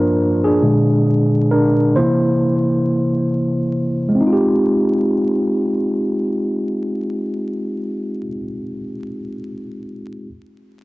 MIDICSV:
0, 0, Header, 1, 2, 480
1, 0, Start_track
1, 0, Tempo, 895522
1, 327, Time_signature, 4, 2, 24, 8
1, 5813, End_track
2, 0, Start_track
2, 0, Title_t, "Tine electric piano"
2, 0, Program_c, 0, 4
2, 0, Control_c, 0, 64, 127
2, 0, Note_on_c, 0, 43, 58
2, 0, Note_on_c, 0, 53, 43
2, 0, Note_on_c, 0, 58, 60
2, 0, Note_on_c, 0, 62, 78
2, 0, Note_on_c, 0, 65, 73
2, 0, Note_on_c, 0, 70, 99
2, 0, Note_on_c, 0, 72, 100
2, 69, Note_off_c, 0, 43, 0
2, 71, Note_off_c, 0, 53, 0
2, 73, Note_off_c, 0, 58, 0
2, 216, Note_off_c, 0, 70, 0
2, 221, Note_off_c, 0, 62, 0
2, 238, Note_on_c, 0, 68, 95
2, 250, Note_on_c, 0, 62, 67
2, 333, Note_on_c, 0, 46, 56
2, 335, Control_c, 0, 64, 0
2, 335, Note_on_c, 0, 50, 48
2, 337, Note_on_c, 0, 56, 62
2, 338, Note_off_c, 0, 65, 0
2, 338, Note_off_c, 0, 72, 0
2, 414, Control_c, 0, 64, 127
2, 793, Note_off_c, 0, 62, 0
2, 810, Note_on_c, 0, 70, 91
2, 819, Note_on_c, 0, 62, 75
2, 826, Note_off_c, 0, 68, 0
2, 1029, Note_off_c, 0, 46, 0
2, 1030, Note_off_c, 0, 50, 0
2, 1031, Note_off_c, 0, 56, 0
2, 1037, Note_off_c, 0, 62, 0
2, 1050, Note_on_c, 0, 72, 96
2, 1053, Note_on_c, 0, 48, 61
2, 1054, Control_c, 0, 64, 0
2, 1056, Note_off_c, 0, 70, 0
2, 1057, Note_on_c, 0, 52, 55
2, 1060, Note_on_c, 0, 58, 67
2, 1062, Note_on_c, 0, 64, 82
2, 1153, Control_c, 0, 64, 127
2, 1390, Note_off_c, 0, 48, 0
2, 1392, Note_off_c, 0, 52, 0
2, 1393, Note_off_c, 0, 58, 0
2, 1987, Note_off_c, 0, 72, 0
2, 1993, Note_off_c, 0, 64, 0
2, 2192, Note_on_c, 0, 56, 74
2, 2225, Note_on_c, 0, 60, 71
2, 2254, Control_c, 0, 64, 0
2, 2255, Note_on_c, 0, 63, 75
2, 2289, Note_on_c, 0, 65, 68
2, 2320, Note_on_c, 0, 67, 84
2, 2357, Control_c, 0, 64, 127
2, 4399, Note_off_c, 0, 56, 0
2, 4433, Note_off_c, 0, 60, 0
2, 4463, Note_off_c, 0, 63, 0
2, 4496, Note_off_c, 0, 65, 0
2, 4528, Note_off_c, 0, 67, 0
2, 5515, Control_c, 0, 64, 0
2, 5813, End_track
0, 0, End_of_file